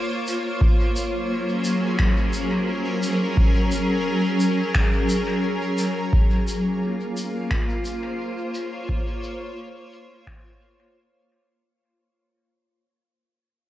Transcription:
Already playing: A#3 F4 C5 C#5
0.27 shaker
0.61 F#3, kick
0.82 C#4
0.94 G#4, shaker
1.38 A#4
1.64 shaker
1.99 finger snap, kick
2.33 shaker
3.03 shaker
3.37 kick
3.72 shaker
4.40 shaker
4.75 finger snap, kick
5.09 shaker
5.78 shaker
6.13 A#3, kick
6.23 F4
6.48 shaker
7.17 C5, shaker
7.51 finger snap, kick
7.81 C#5, shaker
8.54 shaker
8.89 kick
9.23 shaker
9.93 shaker
10.27 finger snap, kick
10.61 shaker
11.31 shaker

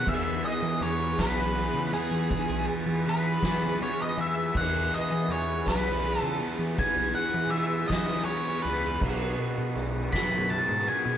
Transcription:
Already playing: B2 F#3 B3
0.06 E2 E3 E4 G#4 B4 E5, kick, crash
0.44 D#5, ride
0.61 E3 F#3
0.81 E2 E3 C#5, ride
1.18 B1 B3 B4, kick, snare, ride
1.23 B3
1.56 E3, ride
1.73 C#3
1.85 B3
1.93 B3 G#4, ride
2.11 E3
2.30 E3, kick, ride
2.46 B1 B2
2.68 ride
2.86 E3
3.05 E3, ride
3.09 F#3 B4
3.42 E3 B3, kick, snare, ride
3.72 B3
3.80 E3 C#5, ride
4.02 D#5
4.17 E3 B3 E5, ride
4.35 B3
4.55 E2 E3 F#5, kick, crash
4.93 D#5, ride
4.97 B2
5.10 E3
5.28 E2 E3 C#5, ride
5.59 F#3
5.66 B1 B3 B4, kick, snare, ride
6.03 E3, ride
6.19 C#3 B3 A4
6.40 B3, ride
6.59 E3
6.77 E3 G#5, kick, ride
6.83 B3
6.96 B1
7.15 F#5, ride
7.34 E3
7.45 B2
7.50 E3 E5, ride
7.88 E3 B3 D#5, kick, snare, ride
8.07 F#3
8.25 E3 C#5, ride
8.62 C#2 B3 B4, ride
8.70 B3
9.00 B1 B2 D#3 B3 F#4, kick, crash
9.32 B3
9.39 ride
9.58 B2
9.75 B1 D#3, ride
9.95 B2
10.13 F#2 B3 B5, kick, snare, ride
10.50 D#3 A5, ride
10.58 F#3
10.68 G#2
10.87 B3 G#5, ride
11.05 B2

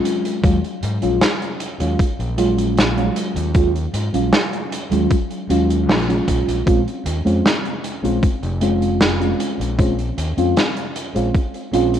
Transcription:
Already playing: F#3 G#3 C#4 F4
0.05 closed hi-hat
0.25 closed hi-hat
0.43 D#2 F#3 G#3 C#4 F4, kick, closed hi-hat
0.64 closed hi-hat
0.83 G#2, closed hi-hat
1.02 A#1 F#3 G#3 C#4 F4, closed hi-hat
1.21 snare, closed hi-hat
1.42 closed hi-hat
1.60 closed hi-hat
1.79 D#2 F#3 G#3 C#4 F4, closed hi-hat
1.99 muted fingered electric bass stroke, kick, closed hi-hat
2.19 A#1, closed hi-hat
2.37 F#3 G#3 C#4 F4, closed hi-hat
2.58 closed hi-hat
2.77 snare, closed hi-hat
2.96 F#3 G#3 C#4 F4, closed hi-hat
3.16 closed hi-hat
3.36 D#2, closed hi-hat
3.54 F#3 G#3 C#4 F4, kick, closed hi-hat
3.76 closed hi-hat
3.94 G#2, closed hi-hat
4.13 A#1 F#3 G#3 C#4 F4, closed hi-hat
4.33 snare, closed hi-hat
4.53 closed hi-hat
4.72 closed hi-hat
4.91 D#2 F#3 G#3 C#4 F4, closed hi-hat
5.11 kick, closed hi-hat
5.31 closed hi-hat
5.49 D#2 F#3 G#3 C#4 F4, closed hi-hat
5.70 closed hi-hat
5.89 A#1, snare, closed hi-hat
6.08 F#3 G#3 C#4 F4, closed hi-hat
6.28 A#1, kick, closed hi-hat
6.48 A#1, closed hi-hat
6.66 A#1 G#3 C4 C#4 F4, kick, closed hi-hat
6.88 closed hi-hat
7.06 D#2, closed hi-hat
7.25 F2 G#3 C4 C#4 F4, closed hi-hat
7.46 snare, closed hi-hat
7.65 closed hi-hat
7.84 closed hi-hat
8.03 A#1 G#3 C4 C#4 F4, closed hi-hat
8.23 muted fingered electric bass stroke, kick, closed hi-hat
8.43 F1, closed hi-hat
8.61 G#3 C4 C#4 F4, closed hi-hat
8.82 closed hi-hat
9.01 snare, closed hi-hat
9.20 G#3 C4 C#4 F4, closed hi-hat
9.40 closed hi-hat
9.60 A#1, closed hi-hat
9.78 G#3 C4 C#4 F4, kick, closed hi-hat
9.99 closed hi-hat
10.18 D#2, closed hi-hat
10.37 F2 G#3 C4 C#4 F4, closed hi-hat
10.57 snare, closed hi-hat
10.77 closed hi-hat
10.96 closed hi-hat
11.14 A#1 G#3 C4 C#4 F4, closed hi-hat
11.34 kick, closed hi-hat
11.54 closed hi-hat
11.72 A#1 G#3 C4 C#4 F4, closed hi-hat
11.94 closed hi-hat

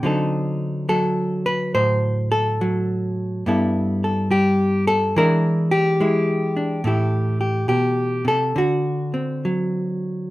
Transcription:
0.03 D3 F#3 C4 D#4 A4
0.89 F#3 A4
1.46 B4
1.75 A2 C5
2.32 A4
2.61 F#3
3.46 G2 G3 B3 E4 A4
4.04 A4
4.31 G3 G4
4.87 A4
5.16 E3 G#3 D4 E4 A#4
5.71 G4
6.00 G#3 E4
6.57 D4
6.84 A2 A3 E4 G4
7.41 G4
7.68 B2 G4
8.25 C3 A4
8.56 D3 F#4
9.14 C4
9.45 F#3

